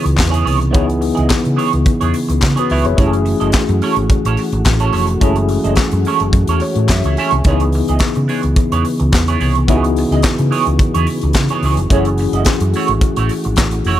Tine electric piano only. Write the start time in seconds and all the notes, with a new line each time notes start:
Already playing: B3 D#4 E4 G#4
0.72 B3 D#4 E4 G#4
2.59 F#4 B4
2.71 B4 E5
2.85 G#4 C#5
2.97 A3 C#4 E4 G4
3.07 G#4
5.20 G#3 C#4 E4 G#4
5.27 A3
6.62 C#5
6.90 E5
7.18 G#5
7.45 B3 D#4 E4 G#4
9.68 B3 D#4 E4 F#4
9.77 G#4
11.90 A3 C#4 E4 G#4